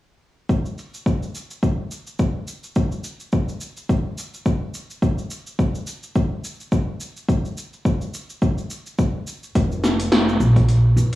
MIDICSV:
0, 0, Header, 1, 3, 480
1, 0, Start_track
1, 0, Tempo, 566038
1, 420, Time_signature, 4, 2, 24, 8
1, 9458, End_track
2, 0, Start_track
2, 0, Title_t, "Upright bass"
2, 0, Program_c, 0, 32
2, 8102, Note_on_c, 0, 29, 85
2, 8789, Note_off_c, 0, 29, 0
2, 8819, Note_on_c, 0, 34, 100
2, 9268, Note_off_c, 0, 34, 0
2, 9299, Note_on_c, 0, 29, 72
2, 9458, Note_off_c, 0, 29, 0
2, 9458, End_track
3, 0, Start_track
3, 0, Title_t, "Drums"
3, 420, Note_on_c, 9, 36, 92
3, 422, Note_on_c, 9, 69, 36
3, 505, Note_off_c, 9, 36, 0
3, 507, Note_off_c, 9, 69, 0
3, 557, Note_on_c, 9, 69, 26
3, 642, Note_off_c, 9, 69, 0
3, 664, Note_on_c, 9, 69, 63
3, 748, Note_off_c, 9, 69, 0
3, 799, Note_on_c, 9, 69, 31
3, 884, Note_off_c, 9, 69, 0
3, 900, Note_on_c, 9, 36, 96
3, 906, Note_on_c, 9, 69, 38
3, 985, Note_off_c, 9, 36, 0
3, 991, Note_off_c, 9, 69, 0
3, 1041, Note_on_c, 9, 69, 27
3, 1125, Note_off_c, 9, 69, 0
3, 1145, Note_on_c, 9, 69, 64
3, 1230, Note_off_c, 9, 69, 0
3, 1277, Note_on_c, 9, 69, 30
3, 1362, Note_off_c, 9, 69, 0
3, 1380, Note_on_c, 9, 36, 90
3, 1383, Note_on_c, 9, 69, 36
3, 1465, Note_off_c, 9, 36, 0
3, 1468, Note_off_c, 9, 69, 0
3, 1622, Note_on_c, 9, 69, 68
3, 1707, Note_off_c, 9, 69, 0
3, 1754, Note_on_c, 9, 69, 28
3, 1839, Note_off_c, 9, 69, 0
3, 1858, Note_on_c, 9, 69, 39
3, 1860, Note_on_c, 9, 36, 85
3, 1943, Note_off_c, 9, 69, 0
3, 1945, Note_off_c, 9, 36, 0
3, 2099, Note_on_c, 9, 69, 68
3, 2184, Note_off_c, 9, 69, 0
3, 2234, Note_on_c, 9, 69, 28
3, 2319, Note_off_c, 9, 69, 0
3, 2337, Note_on_c, 9, 69, 38
3, 2341, Note_on_c, 9, 36, 95
3, 2422, Note_off_c, 9, 69, 0
3, 2425, Note_off_c, 9, 36, 0
3, 2473, Note_on_c, 9, 69, 26
3, 2558, Note_off_c, 9, 69, 0
3, 2577, Note_on_c, 9, 69, 67
3, 2662, Note_off_c, 9, 69, 0
3, 2712, Note_on_c, 9, 69, 31
3, 2797, Note_off_c, 9, 69, 0
3, 2816, Note_on_c, 9, 69, 38
3, 2820, Note_on_c, 9, 36, 90
3, 2901, Note_off_c, 9, 69, 0
3, 2905, Note_off_c, 9, 36, 0
3, 2954, Note_on_c, 9, 69, 30
3, 3039, Note_off_c, 9, 69, 0
3, 3058, Note_on_c, 9, 69, 69
3, 3142, Note_off_c, 9, 69, 0
3, 3195, Note_on_c, 9, 69, 33
3, 3280, Note_off_c, 9, 69, 0
3, 3300, Note_on_c, 9, 36, 95
3, 3303, Note_on_c, 9, 69, 41
3, 3385, Note_off_c, 9, 36, 0
3, 3387, Note_off_c, 9, 69, 0
3, 3543, Note_on_c, 9, 69, 80
3, 3628, Note_off_c, 9, 69, 0
3, 3679, Note_on_c, 9, 69, 27
3, 3764, Note_off_c, 9, 69, 0
3, 3780, Note_on_c, 9, 36, 95
3, 3781, Note_on_c, 9, 69, 42
3, 3864, Note_off_c, 9, 36, 0
3, 3866, Note_off_c, 9, 69, 0
3, 4022, Note_on_c, 9, 69, 72
3, 4107, Note_off_c, 9, 69, 0
3, 4158, Note_on_c, 9, 69, 30
3, 4243, Note_off_c, 9, 69, 0
3, 4260, Note_on_c, 9, 36, 94
3, 4261, Note_on_c, 9, 69, 42
3, 4344, Note_off_c, 9, 36, 0
3, 4346, Note_off_c, 9, 69, 0
3, 4396, Note_on_c, 9, 69, 27
3, 4480, Note_off_c, 9, 69, 0
3, 4499, Note_on_c, 9, 69, 74
3, 4584, Note_off_c, 9, 69, 0
3, 4636, Note_on_c, 9, 69, 32
3, 4721, Note_off_c, 9, 69, 0
3, 4740, Note_on_c, 9, 36, 102
3, 4743, Note_on_c, 9, 69, 40
3, 4824, Note_off_c, 9, 36, 0
3, 4828, Note_off_c, 9, 69, 0
3, 4875, Note_on_c, 9, 69, 30
3, 4960, Note_off_c, 9, 69, 0
3, 4977, Note_on_c, 9, 69, 72
3, 5062, Note_off_c, 9, 69, 0
3, 5115, Note_on_c, 9, 69, 32
3, 5200, Note_off_c, 9, 69, 0
3, 5220, Note_on_c, 9, 36, 97
3, 5221, Note_on_c, 9, 69, 40
3, 5304, Note_off_c, 9, 36, 0
3, 5305, Note_off_c, 9, 69, 0
3, 5464, Note_on_c, 9, 69, 76
3, 5549, Note_off_c, 9, 69, 0
3, 5600, Note_on_c, 9, 69, 30
3, 5684, Note_off_c, 9, 69, 0
3, 5699, Note_on_c, 9, 36, 96
3, 5700, Note_on_c, 9, 69, 46
3, 5784, Note_off_c, 9, 36, 0
3, 5785, Note_off_c, 9, 69, 0
3, 5941, Note_on_c, 9, 69, 74
3, 6026, Note_off_c, 9, 69, 0
3, 6078, Note_on_c, 9, 69, 32
3, 6163, Note_off_c, 9, 69, 0
3, 6179, Note_on_c, 9, 36, 99
3, 6183, Note_on_c, 9, 69, 42
3, 6264, Note_off_c, 9, 36, 0
3, 6268, Note_off_c, 9, 69, 0
3, 6319, Note_on_c, 9, 69, 25
3, 6404, Note_off_c, 9, 69, 0
3, 6425, Note_on_c, 9, 69, 69
3, 6510, Note_off_c, 9, 69, 0
3, 6559, Note_on_c, 9, 69, 33
3, 6644, Note_off_c, 9, 69, 0
3, 6659, Note_on_c, 9, 36, 94
3, 6663, Note_on_c, 9, 69, 40
3, 6744, Note_off_c, 9, 36, 0
3, 6748, Note_off_c, 9, 69, 0
3, 6795, Note_on_c, 9, 69, 30
3, 6880, Note_off_c, 9, 69, 0
3, 6902, Note_on_c, 9, 69, 74
3, 6987, Note_off_c, 9, 69, 0
3, 7036, Note_on_c, 9, 69, 33
3, 7120, Note_off_c, 9, 69, 0
3, 7139, Note_on_c, 9, 36, 99
3, 7141, Note_on_c, 9, 69, 41
3, 7224, Note_off_c, 9, 36, 0
3, 7225, Note_off_c, 9, 69, 0
3, 7274, Note_on_c, 9, 69, 27
3, 7359, Note_off_c, 9, 69, 0
3, 7380, Note_on_c, 9, 69, 75
3, 7465, Note_off_c, 9, 69, 0
3, 7515, Note_on_c, 9, 69, 30
3, 7600, Note_off_c, 9, 69, 0
3, 7620, Note_on_c, 9, 36, 93
3, 7620, Note_on_c, 9, 69, 46
3, 7705, Note_off_c, 9, 36, 0
3, 7705, Note_off_c, 9, 69, 0
3, 7861, Note_on_c, 9, 69, 70
3, 7946, Note_off_c, 9, 69, 0
3, 7998, Note_on_c, 9, 69, 31
3, 8083, Note_off_c, 9, 69, 0
3, 8101, Note_on_c, 9, 36, 115
3, 8101, Note_on_c, 9, 46, 55
3, 8104, Note_on_c, 9, 69, 41
3, 8185, Note_off_c, 9, 36, 0
3, 8186, Note_off_c, 9, 46, 0
3, 8188, Note_off_c, 9, 69, 0
3, 8239, Note_on_c, 9, 69, 28
3, 8324, Note_off_c, 9, 69, 0
3, 8341, Note_on_c, 9, 38, 29
3, 8343, Note_on_c, 9, 69, 70
3, 8425, Note_off_c, 9, 38, 0
3, 8428, Note_off_c, 9, 69, 0
3, 8476, Note_on_c, 9, 46, 45
3, 8479, Note_on_c, 9, 69, 31
3, 8561, Note_off_c, 9, 46, 0
3, 8564, Note_off_c, 9, 69, 0
3, 8580, Note_on_c, 9, 38, 97
3, 8580, Note_on_c, 9, 46, 54
3, 8583, Note_on_c, 9, 69, 39
3, 8665, Note_off_c, 9, 38, 0
3, 8665, Note_off_c, 9, 46, 0
3, 8668, Note_off_c, 9, 69, 0
3, 8722, Note_on_c, 9, 69, 29
3, 8806, Note_off_c, 9, 69, 0
3, 8823, Note_on_c, 9, 69, 73
3, 8908, Note_off_c, 9, 69, 0
3, 8956, Note_on_c, 9, 36, 98
3, 8958, Note_on_c, 9, 46, 45
3, 8961, Note_on_c, 9, 69, 31
3, 9040, Note_off_c, 9, 36, 0
3, 9043, Note_off_c, 9, 46, 0
3, 9046, Note_off_c, 9, 69, 0
3, 9061, Note_on_c, 9, 46, 49
3, 9064, Note_on_c, 9, 69, 37
3, 9146, Note_off_c, 9, 46, 0
3, 9148, Note_off_c, 9, 69, 0
3, 9306, Note_on_c, 9, 69, 71
3, 9391, Note_off_c, 9, 69, 0
3, 9458, End_track
0, 0, End_of_file